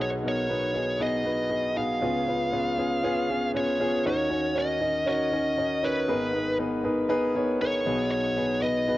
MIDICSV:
0, 0, Header, 1, 3, 480
1, 0, Start_track
1, 0, Key_signature, -6, "minor"
1, 0, Tempo, 508475
1, 1903, Time_signature, 4, 2, 24, 8
1, 8474, End_track
2, 0, Start_track
2, 0, Title_t, "Lead electric guitar"
2, 0, Program_c, 0, 29
2, 17, Note_on_c, 0, 73, 80
2, 77, Note_off_c, 0, 73, 0
2, 267, Note_on_c, 0, 73, 78
2, 964, Note_off_c, 0, 73, 0
2, 968, Note_on_c, 0, 75, 91
2, 1672, Note_on_c, 0, 77, 95
2, 1696, Note_off_c, 0, 75, 0
2, 3309, Note_off_c, 0, 77, 0
2, 3369, Note_on_c, 0, 73, 90
2, 3803, Note_off_c, 0, 73, 0
2, 3844, Note_on_c, 0, 73, 89
2, 4327, Note_off_c, 0, 73, 0
2, 4331, Note_on_c, 0, 75, 98
2, 4764, Note_off_c, 0, 75, 0
2, 4801, Note_on_c, 0, 75, 100
2, 5518, Note_on_c, 0, 71, 73
2, 5533, Note_off_c, 0, 75, 0
2, 6192, Note_off_c, 0, 71, 0
2, 7190, Note_on_c, 0, 73, 91
2, 7647, Note_off_c, 0, 73, 0
2, 7659, Note_on_c, 0, 73, 95
2, 8107, Note_off_c, 0, 73, 0
2, 8140, Note_on_c, 0, 75, 106
2, 8474, Note_off_c, 0, 75, 0
2, 8474, End_track
3, 0, Start_track
3, 0, Title_t, "Grand piano"
3, 0, Program_c, 1, 0
3, 0, Control_c, 1, 64, 127
3, 0, Note_on_c, 1, 35, 80
3, 0, Note_on_c, 1, 47, 81
3, 0, Note_on_c, 1, 59, 95
3, 0, Note_on_c, 1, 63, 87
3, 0, Note_on_c, 1, 66, 86
3, 0, Note_on_c, 1, 68, 99
3, 126, Note_off_c, 1, 59, 0
3, 128, Note_off_c, 1, 63, 0
3, 129, Note_off_c, 1, 66, 0
3, 131, Note_off_c, 1, 68, 0
3, 219, Note_on_c, 1, 59, 65
3, 222, Note_on_c, 1, 63, 65
3, 225, Note_on_c, 1, 66, 61
3, 230, Note_on_c, 1, 70, 72
3, 402, Note_off_c, 1, 59, 0
3, 403, Note_off_c, 1, 63, 0
3, 405, Note_off_c, 1, 66, 0
3, 408, Note_off_c, 1, 70, 0
3, 465, Note_on_c, 1, 59, 70
3, 466, Note_on_c, 1, 63, 60
3, 471, Note_on_c, 1, 66, 57
3, 472, Note_on_c, 1, 71, 76
3, 645, Note_off_c, 1, 59, 0
3, 645, Note_off_c, 1, 63, 0
3, 648, Note_off_c, 1, 66, 0
3, 648, Note_off_c, 1, 71, 0
3, 692, Note_on_c, 1, 59, 61
3, 698, Note_on_c, 1, 63, 62
3, 698, Note_on_c, 1, 66, 58
3, 701, Note_on_c, 1, 68, 71
3, 878, Note_off_c, 1, 59, 0
3, 881, Note_off_c, 1, 63, 0
3, 882, Note_off_c, 1, 66, 0
3, 883, Note_off_c, 1, 68, 0
3, 939, Note_on_c, 1, 59, 83
3, 946, Note_on_c, 1, 63, 85
3, 946, Note_on_c, 1, 68, 89
3, 947, Note_on_c, 1, 66, 76
3, 1122, Note_off_c, 1, 59, 0
3, 1125, Note_off_c, 1, 63, 0
3, 1125, Note_off_c, 1, 68, 0
3, 1126, Note_off_c, 1, 66, 0
3, 1177, Note_on_c, 1, 59, 71
3, 1180, Note_on_c, 1, 63, 65
3, 1183, Note_on_c, 1, 66, 67
3, 1191, Note_on_c, 1, 71, 82
3, 1361, Note_off_c, 1, 59, 0
3, 1362, Note_off_c, 1, 63, 0
3, 1364, Note_off_c, 1, 66, 0
3, 1368, Note_off_c, 1, 71, 0
3, 1411, Note_on_c, 1, 59, 69
3, 1419, Note_on_c, 1, 63, 62
3, 1419, Note_on_c, 1, 66, 64
3, 1423, Note_on_c, 1, 68, 74
3, 1598, Note_off_c, 1, 59, 0
3, 1602, Note_off_c, 1, 63, 0
3, 1602, Note_off_c, 1, 66, 0
3, 1604, Note_off_c, 1, 68, 0
3, 1627, Note_off_c, 1, 35, 0
3, 1628, Note_off_c, 1, 47, 0
3, 1661, Note_on_c, 1, 59, 77
3, 1664, Note_on_c, 1, 63, 69
3, 1668, Note_on_c, 1, 66, 69
3, 1670, Note_on_c, 1, 68, 86
3, 1843, Note_off_c, 1, 59, 0
3, 1844, Note_off_c, 1, 63, 0
3, 1846, Note_off_c, 1, 66, 0
3, 1847, Note_off_c, 1, 68, 0
3, 1901, Note_on_c, 1, 59, 96
3, 1904, Note_on_c, 1, 61, 83
3, 1905, Note_on_c, 1, 49, 62
3, 1907, Note_on_c, 1, 37, 60
3, 1907, Note_on_c, 1, 65, 82
3, 1908, Note_on_c, 1, 68, 94
3, 1915, Control_c, 1, 64, 0
3, 2060, Control_c, 1, 64, 127
3, 2083, Note_off_c, 1, 59, 0
3, 2085, Note_off_c, 1, 61, 0
3, 2086, Note_off_c, 1, 65, 0
3, 2087, Note_off_c, 1, 68, 0
3, 2145, Note_on_c, 1, 59, 64
3, 2151, Note_on_c, 1, 61, 66
3, 2153, Note_on_c, 1, 65, 63
3, 2160, Note_on_c, 1, 71, 70
3, 2325, Note_off_c, 1, 59, 0
3, 2328, Note_off_c, 1, 61, 0
3, 2329, Note_off_c, 1, 65, 0
3, 2333, Note_off_c, 1, 71, 0
3, 2380, Note_on_c, 1, 59, 80
3, 2382, Note_on_c, 1, 61, 71
3, 2389, Note_on_c, 1, 65, 74
3, 2389, Note_on_c, 1, 68, 87
3, 2562, Note_off_c, 1, 59, 0
3, 2563, Note_off_c, 1, 61, 0
3, 2567, Note_off_c, 1, 65, 0
3, 2567, Note_off_c, 1, 68, 0
3, 2622, Note_on_c, 1, 59, 81
3, 2627, Note_on_c, 1, 61, 72
3, 2630, Note_on_c, 1, 65, 76
3, 2635, Note_on_c, 1, 68, 88
3, 2803, Note_off_c, 1, 59, 0
3, 2806, Note_off_c, 1, 61, 0
3, 2807, Note_off_c, 1, 65, 0
3, 2810, Note_off_c, 1, 68, 0
3, 2861, Note_on_c, 1, 59, 102
3, 2867, Note_on_c, 1, 61, 97
3, 2871, Note_on_c, 1, 65, 92
3, 2875, Note_on_c, 1, 68, 117
3, 3043, Note_off_c, 1, 59, 0
3, 3046, Note_off_c, 1, 61, 0
3, 3048, Note_off_c, 1, 65, 0
3, 3050, Note_off_c, 1, 68, 0
3, 3107, Note_on_c, 1, 59, 89
3, 3110, Note_on_c, 1, 61, 81
3, 3113, Note_on_c, 1, 65, 80
3, 3116, Note_on_c, 1, 68, 91
3, 3286, Note_off_c, 1, 59, 0
3, 3287, Note_off_c, 1, 61, 0
3, 3289, Note_off_c, 1, 65, 0
3, 3290, Note_off_c, 1, 68, 0
3, 3345, Note_on_c, 1, 61, 81
3, 3346, Note_on_c, 1, 59, 87
3, 3351, Note_on_c, 1, 65, 74
3, 3353, Note_on_c, 1, 68, 89
3, 3525, Note_off_c, 1, 59, 0
3, 3525, Note_off_c, 1, 61, 0
3, 3528, Note_off_c, 1, 65, 0
3, 3529, Note_off_c, 1, 68, 0
3, 3584, Note_on_c, 1, 59, 95
3, 3586, Note_on_c, 1, 61, 88
3, 3592, Note_on_c, 1, 65, 81
3, 3597, Note_on_c, 1, 68, 103
3, 3765, Note_off_c, 1, 59, 0
3, 3765, Note_off_c, 1, 61, 0
3, 3768, Note_off_c, 1, 65, 0
3, 3771, Note_off_c, 1, 68, 0
3, 3786, Note_off_c, 1, 49, 0
3, 3787, Note_off_c, 1, 37, 0
3, 3825, Note_on_c, 1, 61, 84
3, 3828, Note_on_c, 1, 63, 85
3, 3828, Note_on_c, 1, 66, 77
3, 3832, Note_on_c, 1, 39, 61
3, 3832, Note_on_c, 1, 51, 66
3, 3834, Note_on_c, 1, 70, 83
3, 3835, Note_on_c, 1, 73, 104
3, 3836, Control_c, 1, 64, 0
3, 3996, Control_c, 1, 64, 127
3, 4005, Note_off_c, 1, 61, 0
3, 4006, Note_off_c, 1, 63, 0
3, 4007, Note_off_c, 1, 66, 0
3, 4009, Note_off_c, 1, 70, 0
3, 4010, Note_off_c, 1, 73, 0
3, 4059, Note_on_c, 1, 61, 73
3, 4059, Note_on_c, 1, 63, 66
3, 4064, Note_on_c, 1, 66, 64
3, 4064, Note_on_c, 1, 70, 63
3, 4064, Note_on_c, 1, 73, 72
3, 4242, Note_off_c, 1, 61, 0
3, 4242, Note_off_c, 1, 63, 0
3, 4244, Note_off_c, 1, 66, 0
3, 4244, Note_off_c, 1, 70, 0
3, 4245, Note_off_c, 1, 73, 0
3, 4297, Note_on_c, 1, 61, 71
3, 4301, Note_on_c, 1, 63, 65
3, 4301, Note_on_c, 1, 66, 66
3, 4304, Note_on_c, 1, 70, 61
3, 4308, Note_on_c, 1, 73, 71
3, 4481, Note_off_c, 1, 61, 0
3, 4483, Note_off_c, 1, 63, 0
3, 4483, Note_off_c, 1, 66, 0
3, 4484, Note_off_c, 1, 70, 0
3, 4486, Note_off_c, 1, 73, 0
3, 4541, Note_on_c, 1, 61, 71
3, 4542, Note_on_c, 1, 63, 66
3, 4545, Note_on_c, 1, 66, 58
3, 4546, Note_on_c, 1, 70, 58
3, 4549, Note_on_c, 1, 75, 79
3, 4723, Note_off_c, 1, 61, 0
3, 4723, Note_off_c, 1, 63, 0
3, 4725, Note_off_c, 1, 66, 0
3, 4725, Note_off_c, 1, 70, 0
3, 4727, Note_off_c, 1, 75, 0
3, 4778, Note_on_c, 1, 61, 91
3, 4783, Note_on_c, 1, 63, 83
3, 4787, Note_on_c, 1, 66, 90
3, 4788, Note_on_c, 1, 73, 101
3, 4789, Note_on_c, 1, 70, 80
3, 4961, Note_off_c, 1, 61, 0
3, 4964, Note_off_c, 1, 63, 0
3, 4966, Note_off_c, 1, 66, 0
3, 4966, Note_off_c, 1, 73, 0
3, 4967, Note_off_c, 1, 70, 0
3, 5024, Note_on_c, 1, 61, 78
3, 5026, Note_on_c, 1, 63, 70
3, 5031, Note_on_c, 1, 66, 70
3, 5036, Note_on_c, 1, 70, 66
3, 5038, Note_on_c, 1, 75, 81
3, 5204, Note_off_c, 1, 61, 0
3, 5205, Note_off_c, 1, 63, 0
3, 5208, Note_off_c, 1, 66, 0
3, 5210, Note_off_c, 1, 70, 0
3, 5211, Note_off_c, 1, 75, 0
3, 5267, Note_on_c, 1, 61, 70
3, 5268, Note_on_c, 1, 63, 72
3, 5270, Note_on_c, 1, 70, 63
3, 5274, Note_on_c, 1, 66, 63
3, 5278, Note_on_c, 1, 75, 76
3, 5446, Note_off_c, 1, 61, 0
3, 5446, Note_off_c, 1, 63, 0
3, 5448, Note_off_c, 1, 70, 0
3, 5449, Note_off_c, 1, 66, 0
3, 5451, Note_off_c, 1, 75, 0
3, 5502, Note_on_c, 1, 61, 77
3, 5505, Note_on_c, 1, 66, 71
3, 5507, Note_on_c, 1, 63, 74
3, 5512, Note_on_c, 1, 70, 71
3, 5516, Note_on_c, 1, 73, 87
3, 5684, Note_off_c, 1, 61, 0
3, 5685, Note_off_c, 1, 66, 0
3, 5686, Note_off_c, 1, 63, 0
3, 5688, Note_off_c, 1, 70, 0
3, 5690, Note_off_c, 1, 73, 0
3, 5709, Note_off_c, 1, 39, 0
3, 5710, Note_off_c, 1, 51, 0
3, 5739, Note_on_c, 1, 59, 96
3, 5742, Note_on_c, 1, 68, 85
3, 5743, Note_on_c, 1, 32, 61
3, 5745, Note_on_c, 1, 63, 84
3, 5746, Note_on_c, 1, 44, 63
3, 5747, Note_on_c, 1, 70, 87
3, 5749, Note_on_c, 1, 71, 106
3, 5754, Control_c, 1, 64, 0
3, 5920, Control_c, 1, 64, 127
3, 5922, Note_off_c, 1, 59, 0
3, 5923, Note_off_c, 1, 68, 0
3, 5925, Note_off_c, 1, 63, 0
3, 5926, Note_off_c, 1, 70, 0
3, 5927, Note_off_c, 1, 71, 0
3, 5978, Note_on_c, 1, 59, 68
3, 5980, Note_on_c, 1, 63, 61
3, 5983, Note_on_c, 1, 68, 66
3, 5988, Note_on_c, 1, 70, 60
3, 5990, Note_on_c, 1, 71, 79
3, 6161, Note_off_c, 1, 59, 0
3, 6162, Note_off_c, 1, 63, 0
3, 6164, Note_off_c, 1, 68, 0
3, 6166, Note_off_c, 1, 70, 0
3, 6167, Note_off_c, 1, 71, 0
3, 6219, Note_on_c, 1, 63, 78
3, 6220, Note_on_c, 1, 59, 86
3, 6224, Note_on_c, 1, 68, 79
3, 6224, Note_on_c, 1, 70, 73
3, 6232, Note_on_c, 1, 71, 95
3, 6402, Note_off_c, 1, 59, 0
3, 6402, Note_off_c, 1, 63, 0
3, 6404, Note_off_c, 1, 68, 0
3, 6404, Note_off_c, 1, 70, 0
3, 6408, Note_off_c, 1, 71, 0
3, 6454, Note_on_c, 1, 59, 78
3, 6459, Note_on_c, 1, 68, 69
3, 6460, Note_on_c, 1, 63, 84
3, 6463, Note_on_c, 1, 70, 72
3, 6464, Note_on_c, 1, 71, 92
3, 6639, Note_off_c, 1, 59, 0
3, 6642, Note_off_c, 1, 63, 0
3, 6642, Note_off_c, 1, 68, 0
3, 6644, Note_off_c, 1, 70, 0
3, 6644, Note_off_c, 1, 71, 0
3, 6693, Note_on_c, 1, 59, 104
3, 6693, Note_on_c, 1, 63, 105
3, 6698, Note_on_c, 1, 68, 107
3, 6700, Note_on_c, 1, 71, 127
3, 6701, Note_on_c, 1, 70, 93
3, 6879, Note_off_c, 1, 59, 0
3, 6879, Note_off_c, 1, 63, 0
3, 6881, Note_off_c, 1, 68, 0
3, 6882, Note_off_c, 1, 71, 0
3, 6883, Note_off_c, 1, 70, 0
3, 6941, Note_on_c, 1, 59, 89
3, 6943, Note_on_c, 1, 63, 81
3, 6947, Note_on_c, 1, 68, 82
3, 6948, Note_on_c, 1, 70, 79
3, 6948, Note_on_c, 1, 73, 94
3, 7123, Note_off_c, 1, 59, 0
3, 7124, Note_off_c, 1, 63, 0
3, 7126, Note_off_c, 1, 68, 0
3, 7126, Note_off_c, 1, 70, 0
3, 7126, Note_off_c, 1, 73, 0
3, 7181, Note_on_c, 1, 59, 69
3, 7188, Note_on_c, 1, 63, 65
3, 7188, Note_on_c, 1, 68, 67
3, 7189, Note_on_c, 1, 70, 71
3, 7195, Note_on_c, 1, 71, 81
3, 7363, Note_off_c, 1, 59, 0
3, 7366, Note_off_c, 1, 63, 0
3, 7366, Note_off_c, 1, 68, 0
3, 7367, Note_off_c, 1, 70, 0
3, 7370, Note_off_c, 1, 71, 0
3, 7385, Note_off_c, 1, 32, 0
3, 7386, Note_off_c, 1, 44, 0
3, 7417, Note_on_c, 1, 63, 71
3, 7418, Note_on_c, 1, 59, 82
3, 7418, Note_on_c, 1, 66, 76
3, 7419, Note_on_c, 1, 35, 70
3, 7420, Note_on_c, 1, 47, 70
3, 7424, Note_on_c, 1, 68, 78
3, 7426, Note_on_c, 1, 71, 88
3, 7434, Control_c, 1, 64, 0
3, 7596, Control_c, 1, 64, 127
3, 7804, Note_off_c, 1, 59, 0
3, 7804, Note_off_c, 1, 63, 0
3, 7804, Note_off_c, 1, 66, 0
3, 7807, Note_off_c, 1, 68, 0
3, 7808, Note_off_c, 1, 71, 0
3, 7897, Note_on_c, 1, 59, 69
3, 7902, Note_on_c, 1, 63, 60
3, 7902, Note_on_c, 1, 66, 63
3, 7903, Note_on_c, 1, 71, 85
3, 7904, Note_on_c, 1, 68, 70
3, 8081, Note_off_c, 1, 59, 0
3, 8083, Note_off_c, 1, 63, 0
3, 8083, Note_off_c, 1, 66, 0
3, 8084, Note_off_c, 1, 68, 0
3, 8084, Note_off_c, 1, 71, 0
3, 8141, Note_on_c, 1, 63, 61
3, 8142, Note_on_c, 1, 59, 73
3, 8143, Note_on_c, 1, 66, 58
3, 8147, Note_on_c, 1, 68, 62
3, 8148, Note_on_c, 1, 71, 77
3, 8323, Note_off_c, 1, 59, 0
3, 8323, Note_off_c, 1, 63, 0
3, 8324, Note_off_c, 1, 66, 0
3, 8326, Note_off_c, 1, 68, 0
3, 8326, Note_off_c, 1, 71, 0
3, 8378, Note_on_c, 1, 59, 70
3, 8380, Note_on_c, 1, 63, 65
3, 8385, Note_on_c, 1, 66, 63
3, 8386, Note_on_c, 1, 68, 60
3, 8388, Note_on_c, 1, 71, 81
3, 8474, Note_off_c, 1, 35, 0
3, 8474, Note_off_c, 1, 47, 0
3, 8474, Note_off_c, 1, 59, 0
3, 8474, Note_off_c, 1, 63, 0
3, 8474, Note_off_c, 1, 66, 0
3, 8474, Note_off_c, 1, 68, 0
3, 8474, Note_off_c, 1, 71, 0
3, 8474, End_track
0, 0, End_of_file